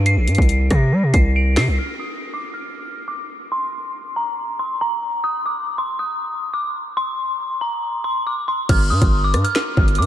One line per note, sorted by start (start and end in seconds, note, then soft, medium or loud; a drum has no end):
0.00 0.18 G2 loud
0.06 0.67 C7 loud
0.06 closed hi-hat medium
0.17 0.29 A#1 loud
0.28 0.38 G2 loud
0.28 closed hi-hat medium
0.35 0.69 C2 loud
0.35 kick loud
0.35 closed hi-hat medium
0.42 closed hi-hat soft
0.49 closed hi-hat medium
0.71 0.94 C3 loud
0.71 1.11 A#6 medium
0.71 kick medium
0.71 cross-stick loud
0.71 closed hi-hat medium
0.92 1.05 G3 loud
1.03 1.13 C3 loud
1.13 1.58 C2 loud
1.13 1.31 C7 medium
1.13 kick loud
1.13 closed hi-hat medium
1.36 1.53 D7 medium
1.56 1.69 C3 loud
1.56 1.75 C7 medium
1.56 finger snap medium
1.56 cross-stick medium
1.56 snare loud
1.56 open hi-hat medium
1.68 1.78 C2 loud
1.79 1.96 F6 medium
2.00 2.30 D#6 medium
2.34 2.51 D6 medium
2.54 3.05 F6 medium
3.08 3.26 D6 medium
3.52 4.12 C6 medium
4.16 4.57 A#5 medium
4.59 4.77 C6 medium
4.81 5.22 A#5 medium
5.24 5.41 D#6 loud
5.46 5.76 D6 medium
5.78 5.96 C6 medium
5.99 6.50 D#6 medium
6.54 6.71 D6 medium
6.97 7.58 C6 loud
7.61 8.02 A#5 medium
8.04 8.22 C6 medium
8.27 8.44 D6 medium
8.48 8.66 C6 medium
8.69 8.92 G1 loud
8.69 8.87 F6 loud
8.69 kick loud
8.69 closed hi-hat medium
8.69 crash loud
8.90 9.01 G2 loud
8.90 9.21 D#6 medium
9.02 9.36 G1 loud
9.02 kick loud
9.02 closed hi-hat medium
9.24 9.42 D6 medium
9.34 9.44 G2 loud
9.34 cross-stick medium
9.34 closed hi-hat medium
9.44 9.95 F6 medium
9.44 closed hi-hat medium
9.55 finger snap medium
9.55 snare loud
9.77 10.00 G1 loud
9.77 kick loud
9.88 closed hi-hat soft
9.95 10.06 G2 loud
9.95 10.06 D6 medium
9.95 closed hi-hat soft
10.02 closed hi-hat soft